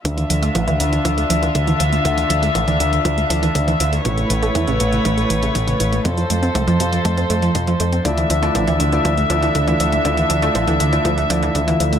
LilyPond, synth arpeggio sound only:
\new Staff \with { instrumentName = "Synth arpeggio sound" } { \clef bass \time 4/4 \key d \dorian \tempo 4 = 120 d16 e16 f16 a16 f16 e16 d16 e16 f16 a16 f16 e16 d16 e16 f16 a16 | d16 e16 f16 a16 f16 e16 d16 e16 f16 a16 f16 e16 d16 e16 f16 a16 | b,16 cis16 e16 a16 e16 cis16 b,16 cis16 e16 a16 e16 cis16 b,16 cis16 e16 a16 | c16 f16 a16 c'16 a16 f16 c16 f16 a16 c'16 a16 f16 c16 f16 a16 c'16 |
d16 e16 f16 a16 f16 e16 d16 e16 f16 a16 f16 e16 d16 e16 f16 a16 | d16 e16 f16 a16 f16 e16 d16 e16 f16 a16 f16 e16 d16 e16 f16 a16 | }